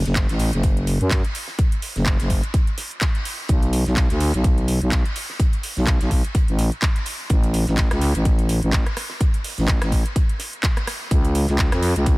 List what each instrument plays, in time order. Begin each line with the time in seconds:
0.05 fm bass F#1, snare, closed hi-hat
0.15 kick, snare, clap, closed hi-hat
0.29 fm bass A1, snare, closed hi-hat
0.39 snare, closed hi-hat, open hi-hat
0.53 fm bass F#1, closed hi-hat
0.63 kick, closed hi-hat
0.77 closed hi-hat
0.87 closed hi-hat, open hi-hat
1.01 fm bass F#2, closed hi-hat
1.10 kick, snare, clap, closed hi-hat
1.24 closed hi-hat
1.35 closed hi-hat, open hi-hat
1.48 snare
1.59 kick, closed hi-hat
1.72 closed hi-hat
1.82 open hi-hat
1.96 fm bass F#1, snare, closed hi-hat
2.06 kick, snare, clap, closed hi-hat
2.20 fm bass F#1, snare, closed hi-hat
2.30 kick, closed hi-hat, open hi-hat
2.43 closed hi-hat
2.54 kick, closed hi-hat
2.67 closed hi-hat
2.78 snare, closed hi-hat, open hi-hat
2.91 closed hi-hat
3.01 kick, snare, clap, closed hi-hat
3.15 closed hi-hat
3.25 closed hi-hat, open hi-hat
3.49 fm bass B1, kick, closed hi-hat
3.62 closed hi-hat
3.73 closed hi-hat, open hi-hat
3.86 fm bass B1, snare, closed hi-hat
3.97 kick, snare, clap, closed hi-hat
4.10 fm bass D2, snare, closed hi-hat
4.20 snare, closed hi-hat, open hi-hat
4.34 fm bass B1, closed hi-hat
4.44 kick, closed hi-hat
4.58 closed hi-hat
4.68 closed hi-hat, open hi-hat
4.82 fm bass B1, closed hi-hat
4.92 kick, snare, clap, closed hi-hat
5.05 closed hi-hat
5.16 closed hi-hat, open hi-hat
5.30 snare
5.40 kick, closed hi-hat
5.53 closed hi-hat
5.63 open hi-hat
5.77 fm bass B1, snare, closed hi-hat
5.87 kick, snare, clap, closed hi-hat
6.00 fm bass B1, snare, closed hi-hat
6.11 kick, closed hi-hat, open hi-hat
6.24 closed hi-hat
6.35 kick, closed hi-hat
6.48 fm bass A1, closed hi-hat
6.58 snare, closed hi-hat, open hi-hat
6.72 closed hi-hat
6.82 kick, snare, clap, closed hi-hat
6.96 closed hi-hat
7.06 closed hi-hat, open hi-hat
7.30 fm bass A1, kick, closed hi-hat
7.43 closed hi-hat
7.54 closed hi-hat, open hi-hat
7.67 fm bass A1, snare, closed hi-hat
7.77 kick, snare, clap, closed hi-hat
7.91 fm bass C#2, cross-stick, snare, closed hi-hat
8.01 snare, closed hi-hat, open hi-hat
8.15 fm bass A1, closed hi-hat
8.25 kick, closed hi-hat
8.39 closed hi-hat
8.49 closed hi-hat, open hi-hat
8.63 fm bass A1, closed hi-hat
8.72 kick, snare, clap, closed hi-hat
8.86 cross-stick, closed hi-hat
8.97 cross-stick, closed hi-hat, open hi-hat
9.10 snare
9.21 kick, closed hi-hat
9.34 closed hi-hat
9.44 open hi-hat
9.58 fm bass A1, snare, closed hi-hat
9.68 kick, snare, clap, closed hi-hat
9.82 fm bass A1, cross-stick, snare, closed hi-hat
9.92 kick, closed hi-hat, open hi-hat
10.06 closed hi-hat
10.16 kick, closed hi-hat
10.29 closed hi-hat
10.39 snare, closed hi-hat, open hi-hat
10.53 closed hi-hat
10.63 kick, snare, clap, closed hi-hat
10.77 cross-stick, closed hi-hat
10.87 cross-stick, closed hi-hat, open hi-hat
11.11 fm bass C#2, kick, closed hi-hat
11.25 closed hi-hat
11.35 closed hi-hat, open hi-hat
11.48 fm bass C#2, snare, closed hi-hat
11.59 kick, snare, clap, closed hi-hat
11.72 fm bass F2, cross-stick, snare, closed hi-hat
11.82 snare, closed hi-hat, open hi-hat
11.96 fm bass C#2, closed hi-hat
12.06 kick, closed hi-hat